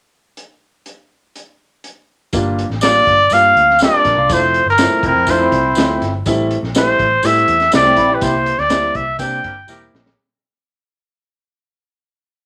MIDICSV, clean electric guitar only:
0, 0, Header, 1, 2, 480
1, 0, Start_track
1, 0, Tempo, 490597
1, 369, Time_signature, 4, 2, 24, 8
1, 12185, End_track
2, 0, Start_track
2, 0, Title_t, "Clean electric guitar"
2, 0, Program_c, 0, 27
2, 3714, Note_on_c, 0, 60, 77
2, 3723, Note_on_c, 0, 57, 66
2, 3830, Note_off_c, 0, 60, 0
2, 3835, Note_off_c, 0, 57, 0
2, 3835, Note_on_c, 0, 62, 74
2, 3843, Note_on_c, 0, 58, 61
2, 4064, Note_off_c, 0, 62, 0
2, 4069, Note_off_c, 0, 58, 0
2, 4073, Note_on_c, 0, 62, 55
2, 4075, Note_on_c, 0, 65, 65
2, 4302, Note_off_c, 0, 65, 0
2, 4304, Note_off_c, 0, 62, 0
2, 4918, Note_on_c, 0, 64, 70
2, 4928, Note_on_c, 0, 60, 64
2, 5145, Note_off_c, 0, 64, 0
2, 5150, Note_off_c, 0, 60, 0
2, 5161, Note_on_c, 0, 62, 63
2, 5162, Note_on_c, 0, 65, 74
2, 5266, Note_off_c, 0, 65, 0
2, 5270, Note_on_c, 0, 64, 75
2, 5272, Note_off_c, 0, 62, 0
2, 5276, Note_on_c, 0, 60, 61
2, 5956, Note_off_c, 0, 64, 0
2, 5959, Note_off_c, 0, 60, 0
2, 7668, Note_on_c, 0, 60, 70
2, 7681, Note_on_c, 0, 57, 59
2, 7786, Note_off_c, 0, 60, 0
2, 7790, Note_on_c, 0, 64, 79
2, 7793, Note_off_c, 0, 57, 0
2, 7797, Note_on_c, 0, 60, 69
2, 7907, Note_off_c, 0, 64, 0
2, 7911, Note_off_c, 0, 60, 0
2, 7915, Note_on_c, 0, 67, 78
2, 7921, Note_on_c, 0, 64, 62
2, 8145, Note_off_c, 0, 67, 0
2, 8148, Note_off_c, 0, 64, 0
2, 12185, End_track
0, 0, End_of_file